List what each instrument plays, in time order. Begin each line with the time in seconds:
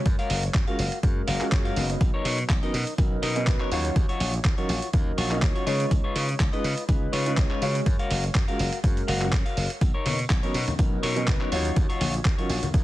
Already playing: grand piano G#3 C#4 F#4 C#5 F5
0.06 slap bass F#2, kick, closed hi-hat
0.19 clean electric guitar F#4 A#4 F5, closed hi-hat
0.30 slap bass F#1, open hi-hat
0.43 closed hi-hat
0.54 slap bass F#2, kick, clap, closed hi-hat
0.67 grand piano G#3 C#4 F4 F#4 A#4, clean electric guitar F#4 A#4 F5, closed hi-hat
0.79 slap bass F#1, open hi-hat
0.92 closed hi-hat
1.03 slap bass F#2, grand piano G#3 C#4 F#4 A#4 F5, kick, closed hi-hat
1.27 slap bass F#1, clean electric guitar F#4 A#4 F5, open hi-hat
1.41 grand piano G#3 C#4 F4 F#4 A#4, muted slap bass stroke, clap, closed hi-hat
1.52 slap bass F#2, grand piano G#3 C#4 F#4 C#5, kick, clap, closed hi-hat
1.65 clean electric guitar F#4 A#4 F5, closed hi-hat
1.76 slap bass F#1, grand piano F#3 B3 C#4 D#4, open hi-hat
1.90 closed hi-hat
2.01 slap bass B1, kick, closed hi-hat
2.14 clean electric guitar D#4 A#4 C#5
2.25 slap bass B2, open hi-hat
2.38 closed hi-hat
2.50 slap bass B1, kick, clap, closed hi-hat
2.62 grand piano F#3 B3 C#4 D#4 A#4, clean electric guitar D#4 A#4 D#5, closed hi-hat
2.74 slap bass B2, open hi-hat
2.87 closed hi-hat
2.98 slap bass B1, grand piano F#3 B3 C#4 D#4 A#4, kick, closed hi-hat
3.22 slap bass B2, clean electric guitar D#4 A#4 D#5, open hi-hat
3.35 grand piano F#3 B3 C#4 D#4 A#4, closed hi-hat
3.47 slap bass B1, grand piano F#3 B3 D#4 B4, kick, clap, closed hi-hat
3.60 clean electric guitar D#4 A#4 C#5, clap
3.71 slap bass D#2, grand piano F#3 C#4 D#4 C#5 F5, clean electric guitar F4 F#4 C#5, open hi-hat
3.85 closed hi-hat
3.96 slap bass D#2, kick, closed hi-hat
4.09 clean electric guitar F4 F#4 C#5, closed hi-hat
4.20 slap bass A#1, open hi-hat
4.34 closed hi-hat
4.45 slap bass D#2, kick, clap, closed hi-hat
4.57 grand piano F#3 C#4 D#4 F4 A#4, clean electric guitar F4 F#4 C#5, closed hi-hat
4.69 slap bass A#1, open hi-hat
4.82 closed hi-hat
4.93 slap bass D#2, grand piano F#3 C#4 D#4 A#4 F5, kick, closed hi-hat
5.18 slap bass A#1, clean electric guitar F4 F#4 C#5, open hi-hat
5.31 grand piano F#3 C#4 D#4 F4 A#4, clap, closed hi-hat
5.42 slap bass D#2, grand piano F#3 C#4 F4 C#5, kick, clap, closed hi-hat
5.55 clean electric guitar F4 F#4 C#5, closed hi-hat
5.66 slap bass C#3, grand piano G#3 C#4 D#4 F4 C#5, clean electric guitar F4 B4 C#5, open hi-hat
5.80 closed hi-hat
5.91 slap bass C#2, kick, closed hi-hat
6.04 clean electric guitar F4 B4 C#5
6.16 slap bass C#3, open hi-hat
6.29 closed hi-hat
6.40 slap bass C#2, kick, clap, closed hi-hat
6.53 grand piano G#3 C#4 D#4 F4 B4, clean electric guitar F4 B4 D#5, closed hi-hat
6.64 slap bass C#3, open hi-hat
6.77 closed hi-hat
6.89 slap bass C#2, grand piano G#3 C#4 D#4 F4 B4, kick, closed hi-hat
7.13 slap bass C#3, clean electric guitar F4 B4 C#5, open hi-hat
7.26 grand piano G#3 C#4 D#4 F4 B4, closed hi-hat
7.37 slap bass C#2, grand piano C#4 C#5, kick, clap, closed hi-hat
7.50 clean electric guitar F4 B4 C#5, clap
7.61 slap bass C#3, grand piano G#3 C#4 F#4 C#5 F5, open hi-hat
7.75 closed hi-hat
7.86 slap bass F#2, kick, closed hi-hat
7.99 clean electric guitar F#4 A#4 F5, closed hi-hat
8.11 slap bass F#1, open hi-hat
8.24 closed hi-hat
8.35 slap bass F#2, kick, clap, closed hi-hat
8.48 grand piano G#3 C#4 F4 F#4 A#4, clean electric guitar F#4 A#4 F5, closed hi-hat
8.59 slap bass F#1, open hi-hat
8.73 closed hi-hat
8.83 slap bass F#2, grand piano G#3 C#4 F#4 A#4 F5, kick, closed hi-hat
8.97 closed hi-hat
9.08 slap bass F#1, clean electric guitar F#4 A#4 F5 F#5, open hi-hat
9.21 grand piano G#3 C#4 F4 F#4 A#4, clap, closed hi-hat
9.33 slap bass F#2, clean electric guitar C#5, kick, clap, closed hi-hat
9.45 clean electric guitar F#4 A#4 F5, closed hi-hat
9.57 slap bass F#1, open hi-hat
9.70 closed hi-hat
9.81 slap bass B1, kick, closed hi-hat, tambourine
9.94 clean electric guitar D#4 A#4 C#5, tambourine
10.06 slap bass B2, open hi-hat, tambourine, high conga
10.19 closed hi-hat, tambourine
10.30 slap bass B1, kick, clap, closed hi-hat
10.43 grand piano F#3 B3 C#4 D#4 A#4, clean electric guitar D#4 A#4 C#5, closed hi-hat, tambourine
10.54 slap bass B2, open hi-hat, tambourine
10.68 closed hi-hat, tambourine, high conga, low conga
10.78 slap bass B1, grand piano F#3 B3 C#4 D#4 A#4, kick, closed hi-hat, tambourine
10.92 tambourine
11.03 slap bass B2, clean electric guitar D#4 A#4 C#5, open hi-hat, tambourine
11.16 grand piano F#3 B3 C#4 D#4 A#4, closed hi-hat, tambourine
11.27 slap bass B1, grand piano B3 B4, kick, clap, closed hi-hat, tambourine, high conga
11.40 clean electric guitar D#4 A#4 C#5, clap, tambourine
11.51 slap bass D#2, grand piano F#3 C#4 D#4 C#5 F5, clean electric guitar F4 F#4 C#5, open hi-hat, tambourine
11.64 closed hi-hat, tambourine
11.76 slap bass D#2, kick, closed hi-hat, tambourine
11.89 clean electric guitar F4 F#4 C#5, closed hi-hat, tambourine
12.01 slap bass A#1, open hi-hat, tambourine, high conga
12.14 closed hi-hat, tambourine
12.25 slap bass D#2, kick, clap, closed hi-hat
12.38 grand piano F#3 C#4 D#4 F4 A#4, clean electric guitar F4 F#4 C#5, closed hi-hat, tambourine
12.49 slap bass A#1, open hi-hat, tambourine
12.62 closed hi-hat, tambourine, high conga, low conga
12.74 slap bass D#2, grand piano F#3 C#4 D#4 A#4 F5, kick, closed hi-hat, tambourine